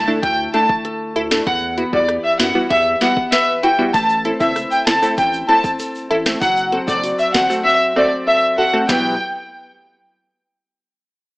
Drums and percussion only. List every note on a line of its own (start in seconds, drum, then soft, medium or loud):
0.23 kick loud
0.23 closed hi-hat medium
0.54 closed hi-hat medium
0.69 kick loud
0.85 closed hi-hat medium
1.16 closed hi-hat medium
1.31 snare loud
1.47 kick loud
1.47 closed hi-hat medium
1.78 closed hi-hat medium
1.93 kick loud
2.08 cross-stick medium
2.08 closed hi-hat medium
2.39 snare loud
2.39 closed hi-hat medium
2.70 kick medium
2.70 closed hi-hat medium
3.01 snare medium
3.01 closed hi-hat soft
3.17 kick medium
3.32 snare loud
3.32 closed hi-hat medium
3.63 closed hi-hat medium
3.94 kick loud
3.94 closed hi-hat medium
3.94 shaker medium
4.09 shaker medium
4.25 closed hi-hat medium
4.40 kick loud
4.40 shaker medium
4.56 cross-stick medium
4.56 closed hi-hat medium
4.56 shaker medium
4.71 shaker medium
4.87 snare loud
4.87 closed hi-hat medium
4.87 shaker medium
5.03 shaker medium
5.18 kick loud
5.18 closed hi-hat medium
5.18 shaker medium
5.33 shaker medium
5.49 closed hi-hat soft
5.64 kick loud
5.64 shaker medium
5.79 closed hi-hat medium
5.79 shaker medium
5.95 shaker medium
6.11 closed hi-hat medium
6.26 snare loud
6.26 shaker medium
6.42 kick loud
6.42 closed hi-hat medium
6.42 shaker medium
6.57 shaker medium
6.72 closed hi-hat medium
6.88 kick loud
6.88 shaker medium
7.03 closed hi-hat medium
7.03 shaker medium
7.19 shaker medium
7.34 kick medium
7.34 snare loud
7.34 closed hi-hat medium
7.34 shaker medium
7.50 shaker medium
8.89 kick loud
8.89 snare loud
8.89 shaker medium